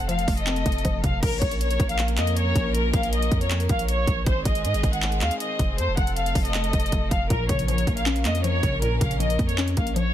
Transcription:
Already playing: 808-style bass F1, synth pluck F2 C3, string section F3 A3 C4 A4
0.09 synth pluck F3, violin section F5, closed hi-hat
0.19 closed hi-hat
0.28 808-style bass F1, synth pluck A3, kick, open hi-hat
0.37 violin section D#5, closed hi-hat
0.47 synth pluck C4, clap, closed hi-hat
0.56 closed hi-hat
0.66 808-style bass F1, synth pluck A3, kick, closed hi-hat
0.72 closed hi-hat
0.78 closed hi-hat
0.85 808-style bass F1, synth pluck F3, kick, closed hi-hat
1.03 808-style bass F1, synth pluck C3, violin section F5, kick, closed hi-hat
1.23 808-style bass A#1, string section F3 A#3 C#4 A#4, violin section A#4, kick, closed hi-hat, crash
1.42 808-style bass A#1, violin section C#5, kick, closed hi-hat
1.51 closed hi-hat
1.61 violin section C#5, closed hi-hat
1.71 closed hi-hat
1.80 808-style bass A#1, kick, closed hi-hat
1.89 violin section F5, closed hi-hat
1.99 clap, closed hi-hat
2.08 closed hi-hat
2.17 808-style bass F2, violin section D#5, clap, closed hi-hat
2.27 closed hi-hat
2.37 violin section C#5, closed hi-hat
2.56 808-style bass A#1, kick, closed hi-hat
2.75 violin section A#4, closed hi-hat
2.94 808-style bass A#1, violin section F5, kick, closed hi-hat
3.03 closed hi-hat
3.13 violin section D#5, closed hi-hat
3.22 closed hi-hat
3.32 808-style bass F2, kick, closed hi-hat
3.41 violin section C#5, closed hi-hat
3.51 clap, closed hi-hat
3.60 closed hi-hat
3.69 808-style bass A#1, violin section F5, kick, closed hi-hat
3.79 closed hi-hat
3.88 violin section C#5, closed hi-hat
4.07 808-style bass A#1, kick, closed hi-hat
4.26 808-style bass G#1, string section D#3 G#3 C4 G#4, violin section C5, kick, closed hi-hat
4.45 808-style bass G#1, violin section D#5, kick, closed hi-hat
4.55 closed hi-hat
4.65 808-style bass G#2, violin section D#5, closed hi-hat
4.74 808-style bass G#1, closed hi-hat
4.83 808-style bass G#1, kick, closed hi-hat
4.93 violin section F#5, closed hi-hat
5.03 clap, closed hi-hat
5.12 closed hi-hat
5.21 808-style bass D#2, violin section F5, clap, closed hi-hat
5.31 closed hi-hat
5.40 violin section D#5, closed hi-hat
5.59 808-style bass F1, kick, closed hi-hat
5.78 808-style bass F2, string section F3 A3 A4, violin section C5, closed hi-hat
5.88 808-style bass F1
5.97 808-style bass F1, violin section F#5, kick, closed hi-hat
6.07 closed hi-hat
6.16 violin section F5, closed hi-hat
6.26 closed hi-hat
6.35 808-style bass F1, kick, open hi-hat
6.45 violin section D#5, closed hi-hat
6.54 clap, closed hi-hat
6.64 closed hi-hat
6.73 808-style bass F1, kick, closed hi-hat
6.80 closed hi-hat
6.86 closed hi-hat
6.92 808-style bass F1, kick, closed hi-hat
7.11 808-style bass F1, violin section F5, kick, closed hi-hat
7.30 808-style bass A#1, synth pluck A#2, string section A#3 C#4 A#4, violin section A#4, kick, closed hi-hat
7.49 808-style bass A#1, synth pluck C#3, violin section C#5, kick, closed hi-hat
7.59 closed hi-hat
7.68 synth pluck F3, violin section C#5, closed hi-hat
7.78 closed hi-hat
7.87 808-style bass A#1, synth pluck A#3, kick, closed hi-hat
7.97 violin section F5, closed hi-hat
8.06 synth pluck C#4, clap, closed hi-hat
8.16 closed hi-hat
8.25 808-style bass F2, synth pluck A#3, violin section D#5, clap, closed hi-hat
8.35 closed hi-hat
8.44 synth pluck F3, violin section C#5, closed hi-hat
8.63 808-style bass A#1, synth pluck C#3, kick, closed hi-hat
8.82 synth pluck A#2, violin section A#4, closed hi-hat
9.01 808-style bass A#1, synth pluck C#3, violin section F5, kick, closed hi-hat
9.11 closed hi-hat
9.20 synth pluck F3, violin section D#5, closed hi-hat
9.30 closed hi-hat
9.39 808-style bass F2, synth pluck A#3, kick, closed hi-hat
9.49 violin section C#5, closed hi-hat
9.58 synth pluck C#4, clap, closed hi-hat
9.68 closed hi-hat
9.77 808-style bass A#1, synth pluck A#3, violin section F5, kick, closed hi-hat
9.87 closed hi-hat
9.96 synth pluck F3, violin section C#5, closed hi-hat

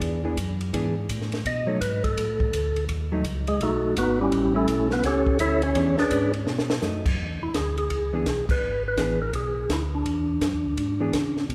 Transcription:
Already playing: hollow-body jazz guitar E3 B3 D4 G#4
0.01 tonewheel organ E2, kick, ride
0.24 hollow-body jazz guitar E3 B3 D4 G#4
0.37 tonewheel organ F#2, kick, hi-hat pedal, ride
0.61 ride
0.73 tonewheel organ G#2, hollow-body jazz guitar E3 B3 D4 G#4, kick, ride
1.09 tonewheel organ A2, kick, hi-hat pedal, ride
1.21 snare
1.32 snare, ride
1.45 tonewheel organ B2 D#5, kick, ride
1.67 hollow-body jazz guitar F#3 A3 D#4, tonewheel organ C#5
1.81 tonewheel organ G#2 B4, kick, hi-hat pedal, ride
2.04 tonewheel organ A4, kick, ride
2.17 tonewheel organ A2, kick, ride
2.40 kick
2.53 tonewheel organ D2, kick, hi-hat pedal, ride
2.76 ride
2.89 tonewheel organ D#2, kick, ride
3.12 hollow-body jazz guitar F#3 A3 D#4
3.24 tonewheel organ C#2, kick, hi-hat pedal, ride
3.47 tonewheel organ G#3 G#4, ride
3.60 tonewheel organ B1 A3 D#4 F#4 A4, kick, ride
3.96 tonewheel organ G#1 B3 D#4 F#4 B4, kick, hi-hat pedal, ride
4.21 tonewheel organ G3 C#4 E4 G4
4.32 tonewheel organ A1, kick, ride
4.54 hollow-body jazz guitar G3 C#4 E4, tonewheel organ A3 C#4 E4 A4
4.68 tonewheel organ B1, kick, hi-hat pedal, ride
4.90 tonewheel organ B3 B4, snare
5.03 tonewheel organ C#2 C#4 G4 A4 C#5, kick, snare, ride
5.27 kick
5.39 tonewheel organ D2 E4 A4 C#5 E5, kick, hi-hat pedal, ride
5.62 tonewheel organ C#4 C#5, ride
5.75 tonewheel organ E2, hollow-body jazz guitar E3 B3 D4 G#4, kick, ride
5.98 tonewheel organ E2 D4 G#4 B4 D5, snare
6.11 tonewheel organ G#2, kick, hi-hat pedal, ride
6.33 ride
6.46 tonewheel organ B2, snare
6.59 snare
6.70 snare
6.82 tonewheel organ F#2, hollow-body jazz guitar F#3 A3 D#4, snare, hi-hat pedal
7.06 kick, crash
7.18 tonewheel organ E2, kick
7.42 tonewheel organ E2 E4
7.54 tonewheel organ D2 G#4, kick, snare, hi-hat pedal, ride
7.78 tonewheel organ G#4, ride
7.90 tonewheel organ C#2, kick, ride
8.13 hollow-body jazz guitar E3 B3 D4 G#4
8.26 tonewheel organ B1, kick, snare, hi-hat pedal, ride
8.49 tonewheel organ B1 B4, kick, crash
8.62 tonewheel organ G#1
8.88 tonewheel organ B4
8.97 tonewheel organ A1, hollow-body jazz guitar E3 B3 D4 G#4, kick, snare, hi-hat pedal, ride
9.22 tonewheel organ A#4
9.33 tonewheel organ B1 G#4, kick, ride
9.69 tonewheel organ D2 E4, kick, snare, hi-hat pedal, ride
9.95 tonewheel organ D4
10.05 tonewheel organ E2, kick, ride
10.41 tonewheel organ F#2, kick, snare, hi-hat pedal, ride
10.54 tonewheel organ E2
10.65 tonewheel organ D2
10.77 tonewheel organ G#2, kick, ride
11.00 hollow-body jazz guitar E3 B3 D4 G#4
11.13 tonewheel organ C#3, kick, snare, hi-hat pedal, ride
11.37 snare
11.49 tonewheel organ B2, kick, ride

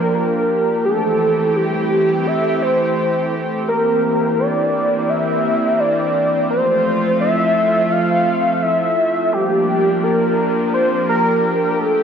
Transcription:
Already playing: analog synth pad F3 A#3 D4 G4, analog synth lead A#4
0.15 analog synth lead A#4
0.85 analog synth pad E3 A3 C4, analog synth lead A4
1.56 analog synth lead G4
2.27 analog synth lead E5
2.62 analog synth lead C5
3.68 analog synth pad E3 A#3, analog synth lead A#4
4.39 analog synth lead D5
5.09 analog synth lead E5
5.80 analog synth lead D5
6.50 analog synth pad F3 A3 F4, analog synth lead C5
7.21 analog synth lead E5
7.92 analog synth lead F5
8.62 analog synth lead E5
9.33 analog synth pad F3 A#3 D4 G4, analog synth lead G4
10.03 analog synth lead A#4
10.74 analog synth lead C5
11.09 analog synth lead A#4
11.80 analog synth lead A4

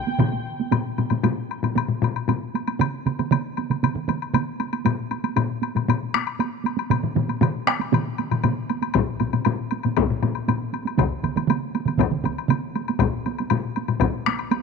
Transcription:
Already playing: piccolo G5
0.07 taiko high
0.19 taiko low-mid, taiko mid, taiko high, high woodblock
0.32 taiko high
0.60 taiko high
0.72 taiko low-mid, taiko high, high woodblock
0.98 taiko low-mid, taiko high, high woodblock
1.10 taiko low-mid, taiko high, high woodblock
1.23 taiko low-mid, taiko high, high woodblock
1.51 high woodblock
1.63 taiko low-mid, taiko high, high woodblock
1.76 taiko low-mid, taiko high, high woodblock
1.88 taiko low-mid
2.02 taiko low-mid, taiko high, high woodblock
2.16 high woodblock
2.28 taiko low-mid, taiko high, high woodblock
2.54 taiko high, high woodblock
2.68 taiko high, high woodblock
2.79 taiko mid, taiko high, high woodblock
3.06 taiko mid, taiko high, high woodblock
3.19 taiko mid, taiko high, high woodblock
3.31 taiko mid, taiko high, high woodblock
3.57 taiko high, high woodblock
3.70 taiko mid, taiko high, high woodblock
3.83 taiko mid, taiko high, high woodblock
3.95 taiko mid
4.08 taiko mid, taiko high, high woodblock
4.22 high woodblock
4.34 taiko mid, taiko high, high woodblock
4.60 taiko high, high woodblock
4.73 taiko high, high woodblock
4.85 taiko low-mid, taiko high, high woodblock
5.11 taiko high, high woodblock
5.24 taiko high, high woodblock
5.36 taiko low-mid, taiko high, high woodblock
5.62 taiko high, high woodblock
5.75 taiko low-mid, taiko high, high woodblock
5.88 taiko low-mid, taiko high, high woodblock
6.14 taiko rim, taiko high, high woodblock
6.27 high woodblock
6.39 taiko high, high woodblock
6.64 taiko high, high woodblock
6.77 taiko high, high woodblock
6.90 taiko low-mid, taiko mid, taiko high, high woodblock
7.03 taiko low-mid, taiko mid
7.15 taiko low-mid, taiko mid, taiko high
7.28 taiko high, high woodblock
7.41 taiko low-mid, taiko mid, taiko high, high woodblock
7.67 taiko rim, taiko high, high woodblock
7.80 taiko high, high woodblock
7.93 taiko low-mid, taiko mid, taiko high, high woodblock
8.18 taiko high, high woodblock
8.31 taiko low-mid, taiko mid, high woodblock
8.44 taiko low-mid, taiko mid, taiko high, high woodblock
8.70 taiko high, high woodblock
8.82 taiko high, high woodblock
8.94 taiko, taiko low-mid, taiko high, high woodblock
9.20 taiko low-mid, taiko high, high woodblock
9.33 taiko low-mid, taiko high, high woodblock
9.45 taiko low-mid, taiko high, high woodblock
9.71 taiko high, high woodblock
9.83 taiko low-mid, taiko high, high woodblock
9.97 taiko, taiko low-mid, taiko high, high woodblock
10.10 taiko low-mid
10.23 taiko low-mid, taiko high, high woodblock
10.35 high woodblock
10.48 taiko low-mid, taiko high, high woodblock
10.73 taiko high, high woodblock
10.85 taiko high, high woodblock
10.97 taiko, taiko mid, taiko high, high woodblock
11.23 taiko mid, taiko high, high woodblock
11.36 taiko mid, taiko high, high woodblock
11.47 taiko mid, taiko high, high woodblock
11.75 taiko high, high woodblock
11.86 taiko mid, taiko high, high woodblock
11.98 taiko, taiko mid, taiko high, high woodblock
12.11 taiko mid
12.24 taiko mid, taiko high, high woodblock
12.38 high woodblock
12.49 taiko mid, taiko high, high woodblock
12.75 taiko high, high woodblock
12.88 taiko high, high woodblock
12.99 taiko, taiko low-mid, taiko high, high woodblock
13.26 taiko high, high woodblock
13.38 taiko high, high woodblock
13.50 taiko low-mid, taiko high, high woodblock
13.76 taiko high, high woodblock
13.88 taiko low-mid, high woodblock
14.00 taiko, taiko low-mid, taiko high, high woodblock
14.26 taiko rim, taiko high, high woodblock
14.39 high woodblock
14.51 taiko high, high woodblock

